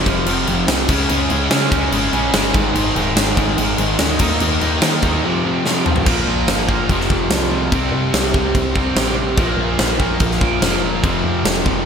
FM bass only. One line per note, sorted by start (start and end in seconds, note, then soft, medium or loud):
0.06 0.24 F1 medium
0.27 0.45 F1 medium
0.48 0.66 F1 medium
0.68 0.86 C2 medium
0.89 1.07 C#2 loud
1.09 1.28 C#2 loud
1.31 1.49 C#2 medium
1.50 1.69 C#3 loud
1.72 1.90 C#2 medium
1.92 2.11 G#1 loud
2.12 2.31 A#1 medium
2.33 2.52 G1 medium
2.54 2.73 G#1 medium
2.75 2.93 G#1 medium
2.95 3.14 D#1 medium
3.16 3.34 G#1 medium
3.37 3.56 G#1 medium
3.58 3.76 G#1 medium
3.79 3.97 G#1 medium
3.99 4.18 D2 loud
4.20 4.38 D#2 medium
4.41 4.59 D#2 loud
4.62 4.80 D#2 medium
4.82 5.00 D#3 medium
5.03 5.21 D#2 medium
6.06 6.26 A#1 loud
6.26 6.46 A#1 medium
6.47 6.87 G1 loud
6.89 7.09 F1 loud
7.10 7.30 F1 medium
7.30 7.70 C2 medium
7.72 7.91 C2 loud
7.92 8.12 C3 medium
8.13 8.33 C2 medium
8.34 8.54 C2 medium
8.55 8.95 C2 loud
8.95 9.36 A1 medium
9.37 9.56 A#1 loud
9.57 9.78 A#1 medium
9.79 10.19 A#1 medium
10.20 10.40 A#1 medium
10.41 10.61 A#1 medium
10.61 11.01 F1 medium
11.03 11.23 F1 loud
11.24 11.44 F2 medium
11.44 11.64 F1 medium
11.66 11.85 F1 medium